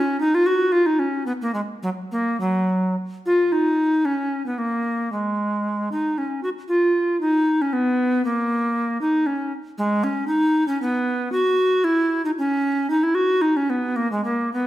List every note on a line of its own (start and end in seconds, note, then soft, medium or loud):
0.00 0.19 C#4 medium
0.20 0.36 D#4 medium
0.35 0.48 F4 medium
0.46 0.74 F#4 medium
0.72 0.88 F4 medium
0.86 1.01 D#4 medium
0.99 1.26 C#4 medium
1.26 1.32 B3 medium
1.42 1.54 A#3 medium
1.54 1.60 G#3 medium
1.83 1.89 F#3 medium
2.12 2.39 A#3 medium
2.40 2.95 F#3 medium
3.26 3.54 F4 medium
3.52 4.07 D#4 medium
4.05 4.45 C#4 medium
4.46 4.60 B3 medium
4.58 5.11 A#3 medium
5.12 5.89 G#3 medium
5.92 6.20 D#4 medium
6.18 6.43 C#4 medium
6.43 6.49 F#4 medium
6.68 7.19 F4 medium
7.21 7.63 D#4 medium
7.62 7.75 C#4 medium
7.73 8.24 B3 medium
8.25 9.00 A#3 medium
9.01 9.28 D#4 medium
9.26 9.53 C#4 medium
9.78 10.05 G#3 medium
10.04 10.27 C#4 medium
10.27 10.66 D#4 medium
10.68 10.81 C#4 medium
10.82 11.32 B3 medium
11.32 11.86 F#4 medium
11.84 12.24 E4 medium
12.25 12.31 D#4 medium
12.38 12.90 C#4 medium
12.90 13.05 D#4 medium
13.03 13.16 E4 medium
13.15 13.43 F#4 medium
13.42 13.58 D#4 medium
13.57 13.71 C#4 medium
13.70 13.98 B3 medium
13.96 14.11 A#3 medium
14.12 14.24 G#3 medium
14.25 14.52 A#3 medium
14.53 14.67 B3 medium